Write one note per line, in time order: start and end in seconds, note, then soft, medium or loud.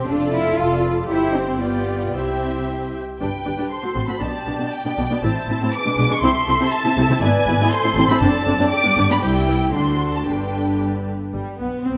0.09 0.51 F1 medium
0.09 0.34 D4 medium
0.09 1.08 F4 medium
0.09 0.58 F4 medium
0.09 0.21 A4 medium
0.09 1.10 A4 medium
0.09 0.21 D5 medium
0.22 0.34 D5 medium
0.34 0.58 E4 medium
0.34 0.47 F5 medium
0.47 0.59 A5 medium
0.59 1.01 F1 medium
0.59 0.84 F4 medium
0.59 0.85 A4 medium
0.59 0.72 F5 medium
0.72 0.85 D5 medium
0.84 0.98 A4 medium
0.84 0.92 B4 medium
0.98 1.10 D5 medium
1.10 2.11 G1 medium
1.10 1.58 E4 medium
1.10 1.34 E4 medium
1.10 1.58 G4 medium
1.10 1.61 C5 medium
1.10 1.59 C5 medium
1.10 1.59 G5 medium
1.36 1.62 C4 medium
1.61 2.15 B3 medium
1.61 2.15 F4 medium
1.61 2.14 G4 medium
1.61 2.14 D5 medium
1.61 2.15 D5 medium
1.61 2.13 G5 medium
2.14 3.01 C2 medium
2.14 2.69 C4 medium
2.14 3.01 E4 medium
2.14 3.00 G4 medium
2.14 3.01 C5 medium
2.14 2.95 E5 medium
2.14 2.99 G5 medium
3.21 3.26 G1 medium
3.21 3.26 G2 medium
3.21 3.26 D4 medium
3.21 3.26 G4 medium
3.21 3.68 B4 medium
3.21 3.67 G5 medium
3.45 3.52 G1 soft
3.45 3.51 G2 soft
3.45 3.51 D4 soft
3.45 3.51 G4 soft
3.58 3.63 G2 medium
3.58 3.63 D4 medium
3.58 3.64 G4 medium
3.71 4.21 A4 medium
3.71 4.21 C5 medium
3.71 4.08 C6 medium
3.83 3.88 A2 medium
3.83 3.88 C4 soft
3.83 3.88 F#4 medium
3.95 4.01 A1 medium
3.95 4.01 A2 medium
3.95 4.01 C4 medium
3.95 4.01 F#4 medium
4.08 4.14 A2 soft
4.08 4.14 C4 medium
4.08 4.14 F#4 medium
4.08 4.22 B5 medium
4.21 4.26 B1 medium
4.21 4.26 B2 medium
4.21 4.26 B3 medium
4.21 4.26 D4 medium
4.21 5.23 G4 medium
4.21 5.21 D5 medium
4.21 4.72 A5 medium
4.47 4.52 B1 soft
4.47 4.52 B2 medium
4.47 4.52 B3 soft
4.47 4.52 D4 soft
4.59 4.65 B2 medium
4.59 4.65 B3 medium
4.59 4.65 D4 medium
4.72 5.23 G5 medium
4.85 4.90 B2 medium
4.85 4.91 B3 medium
4.85 4.91 D4 medium
4.98 5.03 B1 medium
4.98 5.03 B2 medium
4.98 5.03 B3 medium
4.98 5.03 D4 medium
5.11 5.16 B2 medium
5.11 5.16 B3 medium
5.11 5.16 D4 medium
5.23 5.28 A1 medium
5.23 5.29 A2 medium
5.23 5.29 C4 medium
5.23 5.72 E4 medium
5.23 5.29 E4 medium
5.23 5.74 C5 medium
5.23 5.72 A5 medium
5.48 5.53 A1 medium
5.48 5.54 A2 medium
5.48 5.54 C4 medium
5.48 5.55 E4 medium
5.61 5.66 A2 medium
5.61 5.66 C4 medium
5.61 5.67 E4 medium
5.72 6.22 G#4 medium
5.72 6.22 B4 medium
5.72 6.10 D6 loud
5.85 5.91 B2 medium
5.85 5.90 G#3 medium
5.85 5.90 D4 medium
5.97 6.03 B1 medium
5.97 6.04 B2 medium
5.97 6.03 G#3 medium
5.97 6.02 D4 medium
6.10 6.16 B2 medium
6.10 6.15 G#3 medium
6.10 6.15 D4 medium
6.10 6.23 C#6 loud
6.22 6.27 C2 medium
6.22 6.28 C3 medium
6.22 6.28 C4 medium
6.22 6.28 E4 medium
6.22 7.22 A4 medium
6.22 7.20 E5 medium
6.22 6.71 C6 loud
6.48 6.53 C2 medium
6.48 6.53 C3 medium
6.48 6.53 C4 medium
6.48 6.53 E4 medium
6.60 6.65 C3 loud
6.60 6.65 C4 loud
6.60 6.65 E4 medium
6.72 7.22 A5 loud
6.85 6.90 C3 medium
6.85 6.90 C4 medium
6.85 6.90 E4 medium
6.97 7.02 C2 loud
6.97 7.02 C3 loud
6.97 7.03 C4 medium
6.97 7.03 E4 loud
7.09 7.14 C3 medium
7.09 7.16 C4 medium
7.09 7.16 E4 medium
7.21 7.27 G#1 loud
7.21 7.26 G#2 loud
7.21 7.28 B3 loud
7.21 7.28 E4 medium
7.21 7.71 B4 medium
7.21 7.72 D5 medium
7.21 7.71 G#5 loud
7.46 7.51 G#1 medium
7.46 7.51 G#2 medium
7.46 7.53 B3 medium
7.46 7.53 E4 medium
7.58 7.64 G#2 loud
7.58 7.65 B3 loud
7.58 7.65 E4 loud
7.71 8.72 A4 medium
7.71 8.22 C5 medium
7.71 8.09 C6 loud
7.83 7.89 A2 medium
7.83 7.90 C4 medium
7.83 7.90 E4 medium
7.96 8.01 A1 loud
7.96 8.01 A2 loud
7.96 8.03 C4 loud
7.96 8.03 E4 medium
8.08 8.14 A2 medium
8.08 8.15 C4 medium
8.08 8.16 E4 medium
8.08 8.22 B5 loud
8.20 8.27 F#1 medium
8.20 8.26 F#2 loud
8.20 8.27 C4 medium
8.20 8.28 D4 loud
8.20 9.21 D5 medium
8.20 8.71 A5 loud
8.46 8.52 F#1 medium
8.46 8.51 F#2 medium
8.46 8.53 C4 medium
8.46 8.52 D4 medium
8.59 8.64 F#2 loud
8.59 8.65 C4 loud
8.59 8.65 D4 loud
8.71 9.21 G4 medium
8.71 9.09 D6 loud
8.84 8.90 G2 medium
8.84 8.90 B3 medium
8.84 8.90 D4 medium
8.97 9.03 G1 medium
8.97 9.02 G2 medium
8.97 9.02 B3 medium
8.97 9.02 D4 medium
9.10 9.15 G2 medium
9.10 9.15 B3 medium
9.10 9.15 D4 medium
9.10 9.16 B5 loud
9.22 9.71 C2 medium
9.22 9.71 G3 medium
9.22 9.71 E4 medium
9.22 9.71 G4 medium
9.22 9.30 C5 medium
9.22 9.74 G5 loud
9.47 9.55 B4 medium
9.73 10.27 D2 medium
9.73 10.28 D2 medium
9.73 10.26 D3 medium
9.73 10.26 D4 medium
9.73 10.27 F#4 medium
9.73 10.26 A4 medium
9.73 10.13 C6 medium
10.15 10.28 A5 medium
10.26 11.14 G1 medium
10.26 11.14 G2 medium
10.26 11.12 D3 medium
10.26 11.12 D4 medium
10.26 11.13 G4 medium
10.26 11.13 B4 medium
10.26 10.81 G5 medium
11.33 11.43 G1 medium
11.33 11.41 G3 medium
11.33 11.58 G3 soft
11.33 11.58 G3 medium
11.59 11.69 B1 medium
11.59 11.85 B3 soft
11.59 11.67 B3 medium
11.59 11.85 B3 medium
11.85 11.97 C2 medium
11.85 11.88 C4 medium
11.85 11.97 C4 medium
11.92 11.97 B3 medium